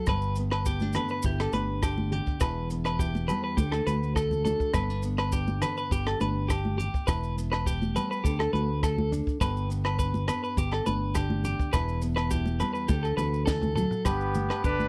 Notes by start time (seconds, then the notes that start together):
0.06 G1 G2 B4, muted nylon-string guitar stroke, kick, cross-stick, low agogo, maracas
0.21 maracas
0.35 B3, closed hi-hat, maracas
0.51 B4, cross-stick, low agogo
0.66 B3 G4, kick, maracas
0.80 D4, high conga, maracas
0.93 D3 B4, cross-stick, closed hi-hat, low conga, low agogo, maracas
0.97 B3
1.08 B4, maracas
1.22 G1 E4 G4, kick, maracas
1.40 G4 A4, cross-stick, low agogo
1.52 G1 D4 B4, closed hi-hat, high conga, maracas
1.83 D3 G4, kick, cross-stick, low agogo, maracas
1.98 high conga, low conga
2.12 G4, closed hi-hat, low conga
2.26 kick, maracas
2.40 E1 E2 E4 B4, kick, cross-stick, low agogo, maracas
2.70 B3, closed hi-hat, maracas
2.85 B4, cross-stick, low agogo, maracas
2.99 E4 G4, kick, maracas
3.15 high conga, maracas
3.28 G3 B3 B4, closed hi-hat, low conga, low agogo, maracas
3.44 B4
3.57 D2 D3 G4 A4, kick, high conga, maracas
3.72 A4, cross-stick, low agogo, maracas
3.87 D2 F#4 B4, closed hi-hat, high conga, maracas
4.03 maracas
4.16 A4, kick, cross-stick, low agogo, maracas
4.31 high conga, low conga, maracas
4.45 D4 F#4 A4, closed hi-hat, high conga, low conga, maracas
4.60 kick, maracas
4.74 G1 G2 B3 B4, kick, cross-stick, low agogo, maracas
4.90 D4, maracas
5.03 B3, closed hi-hat, maracas
5.18 B4, cross-stick, low agogo
5.32 D4 G4, kick, maracas
5.47 high conga, maracas
5.62 D3 B3 B4, cross-stick, closed hi-hat, low conga, low agogo, maracas
5.77 B4, maracas
5.91 G1 G4, kick, maracas
6.07 A4, cross-stick, low agogo
6.20 G1 D4 B4, closed hi-hat, high conga, maracas
6.48 G4, muted nylon-string guitar stroke, kick, cross-stick, low agogo, maracas
6.65 high conga
6.78 G4, closed hi-hat, low conga, maracas
6.94 kick, maracas
7.07 E1 E4 B4, muted nylon-string guitar stroke, kick, cross-stick, low agogo, maracas
7.23 maracas
7.37 B3, closed hi-hat, maracas
7.52 B4, cross-stick, low agogo
7.66 G4, kick, maracas
7.82 high conga, maracas
7.94 G3 B3 B4, closed hi-hat, low conga, low agogo, maracas
8.11 B4, maracas
8.24 D2 D3 G4 A4, kick, maracas
8.39 A4, cross-stick, low agogo
8.53 D2 F#4 B4, closed hi-hat, high conga
8.83 A4, kick, cross-stick, low agogo, maracas
8.98 high conga, low conga
9.12 D4, muted nylon-string guitar stroke, closed hi-hat, low conga, maracas
9.27 kick, maracas
9.40 G1 G2 D3 B3 D4 G4 B4, kick, cross-stick, low agogo, maracas
9.57 maracas
9.69 B3, closed hi-hat, maracas
9.85 B4, cross-stick, low agogo
9.99 B4, kick, maracas
10.14 high conga, maracas
10.28 B3 B4, cross-stick, closed hi-hat, low conga, low agogo, maracas
10.44 B4, maracas
10.57 G1 G4, muted nylon-string guitar stroke, kick, maracas
10.72 G4 A4, cross-stick, low agogo
10.86 G1 D4 B4, closed hi-hat, high conga, maracas
11.15 D3 G4, kick, cross-stick, low agogo, maracas
11.30 high conga, low conga
11.44 G4, closed hi-hat, low conga, maracas
11.59 kick, maracas
11.73 E1 E2 E4 B4, kick, cross-stick, low agogo, maracas
11.89 maracas
12.02 B3, closed hi-hat, maracas
12.16 B4, cross-stick, low agogo, maracas
12.31 E4 G4, kick, maracas
12.46 high conga, maracas
12.60 G3 B3 B4, closed hi-hat, low conga, low agogo, maracas
12.73 B4, maracas
12.88 D2 D3 G4 A4, kick, high conga, maracas
13.03 A4, low agogo, maracas
13.17 D2 F#4 B4, mid tom, high conga, maracas
13.34 maracas
13.46 E3 A4, kick, snare, low agogo, maracas
13.61 mid tom, high conga, low conga, maracas
13.75 F#3 A4, floor tom, high conga, low conga, maracas
13.91 floor tom, maracas
14.05 G1 G2 B3 D4 G4 B4, kick, cross-stick, low agogo, maracas
14.20 maracas
14.35 closed hi-hat, high conga, low conga, maracas
14.50 B4, cross-stick, low agogo
14.64 G1 D3 D4 G4 B4, kick, maracas
14.80 high conga, maracas